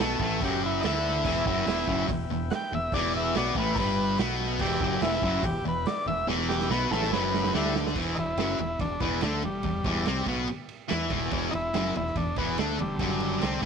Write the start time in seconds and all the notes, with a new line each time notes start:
Already playing: A4 B4 E5 G5
0.00 B1 B2 B3, snare
0.20 A1 A2 A3, kick
0.41 F#1 F#2 F#3 G4, kick, open hi-hat
0.66 E4
0.80 D2 D3 D#4, open hi-hat
0.84 D4 E4, snare
0.95 snare
1.23 E1 E2 E3 B4 E5 G5, kick, crash
1.37 snare
1.46 F#1 F#2 F#3, kick
1.66 E1 E2 E3, snare, open hi-hat
1.88 F#1 F#2 F#3, kick
2.09 E1 E2, kick, open hi-hat
2.30 E1 E2
2.50 F#5, snare, open hi-hat
2.55 G5
2.62 snare
2.72 E1 E2 E5
2.92 E1 E2 E3 D5, kick, open hi-hat
3.17 E5
3.34 B1 B2 B3 D5, snare, open hi-hat
3.55 A1 A2 A3 B4, kick
3.75 G1 G2 A#4, kick, open hi-hat
3.79 G3 B4
4.18 B1 B2 B3, snare, open hi-hat
4.29 snare
4.59 E1 E2 E3 G4 B4 E5 G5, kick, crash
4.71 snare
4.80 F#1 F#2 F#3, kick
5.01 E1 E2 E3 E4, snare, open hi-hat
5.22 F#1 F#2 F#3, kick
5.43 E1 E2 G4, kick, open hi-hat
5.64 E1 E2
5.68 B4
5.86 D5, snare, open hi-hat
5.97 snare
6.06 E1 E2 E5
6.27 E1 E2 E3, snare
6.49 G4, snare
6.60 snare
6.70 B1 B2 B3 B4, snare
6.91 A1 A2 A3 A4, snare
7.03 snare
7.11 F#1 F#2 F#3 B4, snare
7.34 snare
7.44 snare
7.54 D2 D3 G3 D4 E4, snare
7.76 snare
7.87 snare
7.95 E1 E2 E3, kick, crash
8.15 E1 E2 D#4, ride
8.19 E4
8.37 F#1 F#2 F#3, snare, ride
8.58 E1 E2 E4, ride
8.79 E1 E2 D4, kick, ride
9.00 E1 E2 E3 B3, kick, ride
9.21 D2 D3 A3 D4, snare, ride
9.43 E1 E2 G3, ride
9.63 E1 E2, kick, ride
9.84 E1 E2 E3, kick, ride
10.06 C2 C3 C4, snare, ride
10.26 B1 B2 B3, kick, ride
10.47 muted distorted electric guitar stroke, muted fingered electric bass stroke, ride
10.69 ride
10.88 E2 E3 E4, snare, ride
11.10 E1 E2 E3, kick, ride
11.31 E1 E2 E3, kick, ride
11.51 E1 E2 D#4 E4, ride
11.74 F#1 F#2 F#3, snare, ride
11.95 E1 E2 E4, ride
12.07 snare
12.15 E1 E2 D4, kick, ride
12.36 E1 E2 E3 B3, kick, ride
12.58 D2 D3 A3 D4, snare, ride
12.79 E1 E2 D3 G3, ride
12.99 F#1 F#2 F#3, kick, ride
13.20 ride
13.41 C2 C3 C4, snare, ride
13.61 A2, kick